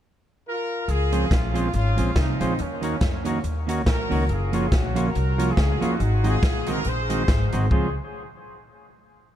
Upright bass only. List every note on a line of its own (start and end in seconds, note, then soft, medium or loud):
0.88 1.24 C#2 medium
1.31 1.67 A#1 loud
1.74 1.94 G#1 medium
1.98 2.14 A#1 medium
2.16 2.37 C2 medium
2.41 2.56 A#1 medium
2.60 2.96 D#2 medium
3.02 3.38 F2 medium
3.44 3.87 D#2 medium
3.87 4.08 A#1 loud
4.11 4.27 C#2 medium
4.29 4.66 F#1 medium
4.72 5.09 A#1 loud
5.16 5.52 C2 loud
5.57 5.78 C#2 medium
6.00 6.37 G#1 loud
6.43 6.79 A#1 medium
6.85 7.22 A#1 medium
7.28 7.49 G#1 medium
7.53 7.69 G#1 medium
7.71 7.94 C#2 medium